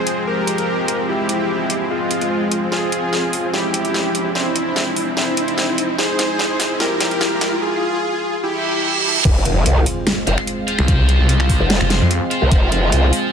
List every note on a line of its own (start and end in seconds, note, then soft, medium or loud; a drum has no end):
0.00 7.58 F3 medium
0.00 7.58 G#3 medium
0.00 7.58 C4 medium
0.00 0.19 G#4 medium
0.00 0.19 C5 loud
0.00 riser medium
0.07 closed hi-hat medium
0.27 1.01 G4 medium
0.27 1.01 A#4 loud
0.47 closed hi-hat medium
0.58 closed hi-hat soft
0.88 closed hi-hat medium
1.09 1.83 E4 medium
1.09 1.83 G4 loud
1.29 closed hi-hat medium
1.70 closed hi-hat medium
1.90 2.64 G#3 medium
1.90 2.64 F4 loud
2.11 closed hi-hat medium
2.21 closed hi-hat soft
2.51 closed hi-hat medium
2.72 3.46 F4 medium
2.72 3.46 G#4 loud
2.72 snare soft
2.92 closed hi-hat medium
3.13 snare medium
3.33 open hi-hat medium
3.54 4.27 E4 medium
3.54 4.27 G4 loud
3.54 snare medium
3.74 closed hi-hat medium
3.85 closed hi-hat soft
3.94 snare medium
4.15 closed hi-hat medium
4.35 5.09 C4 medium
4.35 5.09 E4 loud
4.35 snare medium
4.56 closed hi-hat medium
4.76 snare medium
4.96 open hi-hat medium
5.17 5.91 C4 medium
5.17 5.91 E4 loud
5.17 snare medium
5.37 closed hi-hat medium
5.48 closed hi-hat soft
5.58 snare medium
5.78 closed hi-hat medium
5.98 6.72 G#4 medium
5.98 6.72 C5 loud
5.98 snare medium
6.19 snare medium
6.19 closed hi-hat medium
6.39 snare medium
6.60 snare medium
6.60 open hi-hat medium
6.80 7.54 G4 medium
6.80 7.54 A#4 loud
6.80 snare medium
7.00 snare medium
7.00 closed hi-hat medium
7.11 closed hi-hat soft
7.21 snare medium
7.41 snare medium
7.41 closed hi-hat medium
7.62 8.36 F4 medium
7.62 8.36 G#4 loud
8.43 9.17 E4 medium
8.43 9.17 G4 loud
8.43 reverse cymbal medium
9.25 9.44 F1 medium
9.25 13.32 G#3 medium
9.25 13.32 C4 medium
9.25 13.32 F4 medium
9.25 kick loud
9.25 closed hi-hat medium
9.25 crash loud
9.25 impact medium
9.45 9.64 F1 medium
9.45 closed hi-hat medium
9.66 9.85 C2 medium
9.66 closed hi-hat medium
9.86 open hi-hat medium
10.07 finger snap medium
10.07 snare loud
10.07 closed hi-hat medium
10.27 10.36 F1 medium
10.27 10.35 F4 medium
10.27 10.35 C5 medium
10.27 10.35 F5 loud
10.27 closed hi-hat medium
10.38 finger snap medium
10.47 closed hi-hat medium
10.67 11.88 F4 medium
10.67 11.88 C5 medium
10.67 11.88 F5 medium
10.67 closed hi-hat soft
10.79 11.18 C2 loud
10.79 finger snap medium
10.88 kick loud
10.88 closed hi-hat medium
11.09 closed hi-hat medium
11.19 11.59 C2 loud
11.29 closed hi-hat medium
11.40 finger snap medium
11.49 kick medium
11.49 open hi-hat medium
11.60 11.79 F1 loud
11.70 snare loud
11.70 closed hi-hat medium
11.81 11.99 F1 loud
11.81 finger snap medium
11.90 11.98 F4 medium
11.90 11.98 C5 medium
11.90 11.98 F5 loud
11.90 snare medium
11.90 closed hi-hat medium
12.01 12.20 F2 loud
12.11 closed hi-hat medium
12.31 13.32 F4 medium
12.31 13.32 C5 medium
12.31 13.32 F5 medium
12.31 closed hi-hat medium
12.42 12.50 C2 loud
12.51 12.70 F1 loud
12.51 kick loud
12.51 closed hi-hat medium
12.72 12.91 F1 medium
12.72 closed hi-hat medium
12.92 13.11 C2 medium
12.92 closed hi-hat medium
13.13 open hi-hat medium